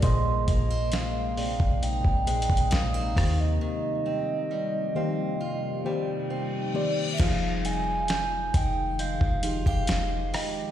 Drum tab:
CC |------------------------------------------------|------------------------------------------------|x-----------------------------------------------|
HH |x-----x-----x-----o-----x-----x-x-x-x-----o-----|------------------------------------------------|x-----x-----x-----x-----x-----x-----x-----o-----|
SD |------------o-----------------------o-----r-----|------------------------------------------------|------------o-----------------------o-----r-----|
BD |o-----o--------------o-----o-----o--------o-----|------------------------------------------------|o-----------------o--------o-----o--------------|